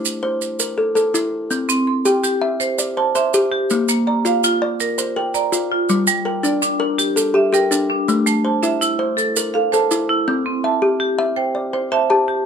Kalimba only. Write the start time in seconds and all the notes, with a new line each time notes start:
Already playing: E4 C5
0.23 C5
0.60 A#4
0.78 A4
0.95 A4
1.14 E4
1.51 C4
2.05 G4
2.42 E5
2.79 D5
2.97 C5
3.15 C5
3.34 G4
3.71 A#3
4.07 D5
4.25 F4
4.62 D5
4.98 C5
5.16 A#4
5.52 F4
5.89 G3
6.25 A#4
6.43 D4
6.80 A#4
7.16 A4
7.34 G4
7.53 G4
7.71 D4
8.08 A3
8.45 C5
8.63 E4
8.99 C5
9.37 A#4
9.55 A4
9.73 A4
9.91 E4
10.28 C4
10.64 E5
10.82 G4
11.19 E5
11.55 D5
11.73 C5
11.92 C5
12.10 G4 A5